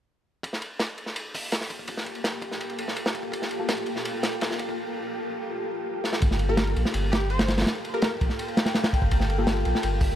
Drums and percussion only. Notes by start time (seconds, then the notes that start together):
0.43 kick, ride
0.53 snare
0.62 ride
0.80 snare, ride
0.89 ride
0.98 ride
1.06 snare
1.16 ride
1.34 kick, open hi-hat
1.52 snare, ride
1.61 snare
1.70 kick, ride
1.79 kick
1.87 kick, ride
1.97 snare
2.06 ride
2.15 ride
2.24 snare, ride
2.42 kick, ride
2.51 snare
2.60 ride
2.69 ride
2.78 ride
2.88 snare
2.96 ride
3.06 snare
3.14 kick, ride
3.23 kick
3.32 kick, ride
3.42 snare
3.51 ride
3.69 snare, ride
3.78 ride
3.86 ride
3.96 snare
4.05 ride
4.23 snare, ride
4.33 ride
4.41 snare, ride
4.51 snare
4.59 kick, ride
4.69 kick
6.04 snare
6.13 snare
6.22 kick, ride
6.31 snare
6.39 ride
6.57 snare, ride
6.67 ride
6.76 ride
6.85 snare
6.94 ride
7.13 snare, ride
7.21 ride
7.30 ride
7.39 snare, ride
7.48 snare, ride
7.58 snare, ride
7.62 snare, ride
7.66 snare, ride
7.75 ride
7.85 ride
7.94 ride
8.02 snare, ride
8.21 kick, ride
8.29 snare
8.39 ride
8.48 ride
8.57 snare, ride
8.66 snare, ride
8.75 snare, ride
8.84 snare, ride
8.93 kick, ride
9.02 kick
9.11 kick, ride
9.20 snare
9.30 ride
9.47 snare, ride
9.57 ride
9.65 ride
9.75 snare
9.83 ride
10.01 kick, open hi-hat